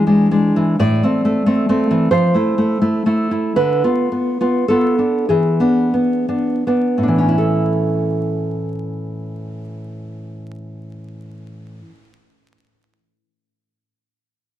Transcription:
Already playing: E3 E4
0.07 G#3 D4
0.31 G#3 D4
0.56 E3
0.79 A2 D5
1.03 A3 C4
1.25 A3
1.46 A3 C4
1.69 A3 C4
1.91 E3
2.11 F3 C5
2.34 A3 E4
2.58 A3
2.82 A3 E4
3.06 A3 E4
3.31 E4
3.56 D3 B4
3.84 B3 F4
4.12 B3
4.41 B3 F4
4.68 B3 F4 A4
4.99 D4
5.29 E3 G#4
5.60 B3 D4
5.94 B3
6.29 B3 D4
6.67 B3 D4
6.98 A2
7.03 D4
7.08 E3
7.18 C#4
7.28 E4
7.38 A4

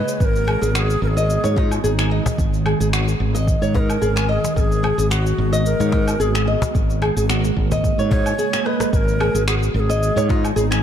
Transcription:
Already playing: C#3 G#3 A#3 F#4 B4 D#5
0.08 cabasa
0.20 G#1 D#3 G#3 B3 B4, kick, cabasa
0.25 A#4
0.36 cabasa
0.47 G#4, cajon slap, low woodblock
0.61 G#1 G#4, cabasa
0.75 F#4 A#4, finger snap, cabasa
0.79 G#4
0.90 cabasa
1.02 G#1 A#4
1.08 G#4
1.17 D#5, cabasa
1.30 cabasa
1.44 G#2 C#5, cajon slap, cabasa
1.56 D#4 F#4, kick, cajon slap
1.62 F4
1.71 cabasa, low woodblock
1.84 G#1 D#4 G#4, cabasa
1.99 G#5, finger snap, cabasa
2.11 D#5
2.26 cajon bass, cajon slap, cabasa
2.38 G#1 C#4 G#4, kick, cabasa
2.54 cabasa
2.66 G#4, cajon slap, low woodblock
2.80 G#1 G#4, cabasa
2.93 F#4, finger snap, cabasa
3.08 cabasa
3.20 G#1
3.35 D#5, cabasa
3.47 kick, cabasa
3.62 G#2 C#5, cabasa
3.74 D#4 B4, kick, cajon bass
3.79 A#4
3.90 cabasa, low woodblock
4.02 G#1 G#4, cabasa
4.16 G#5, finger snap, cabasa
4.29 G#4 A#4 D#5
4.44 cajon slap, cabasa
4.56 G#1 B3 F#4 G#4 A#4, kick, cabasa
4.72 cabasa
4.83 G#4, cajon slap, low woodblock
4.98 G#1 G#4, cabasa
5.10 F#4, finger snap, cabasa
5.26 cabasa
5.38 G#1
5.53 D#5, cabasa
5.65 A#4, cabasa
5.80 G#2 C#5, cajon slap, cabasa
5.92 D#4, kick, cajon slap
6.08 cabasa, low woodblock
6.20 G#1 G#4, cabasa
6.35 G#5, finger snap, cabasa
6.47 D#5
6.62 cajon bass, cajon slap, cabasa
6.74 G#1 C#3 A#3, kick, cabasa
6.90 cabasa
7.02 G#4, cajon slap, low woodblock
7.16 G#1 G#4, cabasa
7.29 F#4, finger snap, cabasa
7.44 cajon slap, cabasa
7.57 G#1, kick
7.71 D#5, cajon bass, cabasa
7.84 kick, cabasa
7.98 G#2 C#5, cabasa
8.11 D#4 C#5, kick, cajon bass
8.26 cabasa, low woodblock
8.39 G#4, cabasa
8.53 G#5, finger snap, cabasa
8.65 B4 D#5, cross-stick
8.80 cross-stick, cajon slap, cabasa
8.93 G#1 D#3 G#3 B3 F#4 A#4 B4, kick, cabasa
9.08 cabasa
9.20 G#4, cajon slap, low woodblock
9.34 G#1 G#4, cabasa
9.47 F#4 G#4, finger snap, cabasa
9.63 cabasa
9.74 G#1 A#4
9.80 G#4
9.89 D#5, cabasa
10.03 cabasa
10.16 G#2 C#5, cajon slap, cabasa
10.29 D#4 F4, kick, cajon slap
10.44 cabasa, low woodblock
10.56 G#1 F4 G#4, cabasa
10.62 D#4
10.71 G#5, finger snap, cabasa

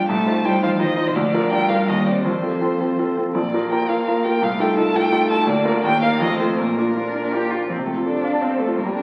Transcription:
Already playing: A#1 D4 F4 D5
0.08 C2 A3 A5
0.26 D#4 F4 C5
0.44 G3 D#4 F4 C5 G5
0.62 F3 D#4 F4 C5 F5
0.79 D#3 D#4 F4 C5 D#5
0.97 D#4 F4 C5
1.07 C3 C5
1.15 D2 F3 D5
1.33 D4 F4 A#4
1.51 G3 D4 F4 A#4 G5
1.69 D4 F4 A#4 F5
1.88 D#2 D#5
2.06 C4 G4 C5 D5
2.24 F2 F3 C5
2.42 C4 F4 A4
2.61 C4 F4 A4
2.80 C4 F4 A4
2.99 C4 F4 A4
3.17 C4 F4 A4
3.34 A#1 A#3 D5
3.54 A#3 F4 A#4
3.71 A#3 F4 A#4 G5
3.89 A#3 F4 A#4 F5
4.08 A#3 F4 A#4
4.24 A#3 F4 A#4 G5
4.42 C2 A3 F5
4.59 D#4 F4 A4 G5
4.77 A3 D#4 F4 A4 A5
4.94 D#4 F4 A4 G5
5.12 D#4 F4 A4
5.30 D#4 F4 A4 A5
5.46 D2 A#3 D5
5.65 D4 F4 A#4
5.83 D#2 A#3 G5
6.02 A#3 D#4 A#4 F5
6.20 F2 A3 D#5
6.39 A3 C4 F4 C5
6.58 A#2 A#3 A#4
6.77 A#3 D4 F4
6.95 A#3 D4 F4
7.15 A#3 D4 F4
7.32 A#3 D4 F4 G4
7.50 A#3 D4 F4
7.68 F2 C4 A4
7.78 C3
7.86 A3 C4
7.97 F4
8.04 D4 A4
8.15 C5
8.24 F5
8.33 A5
8.41 C4 F5
8.51 C5
8.58 A3 A4
8.68 F4
8.76 G2 A#3 A#4
8.85 G3
8.94 C4 D4

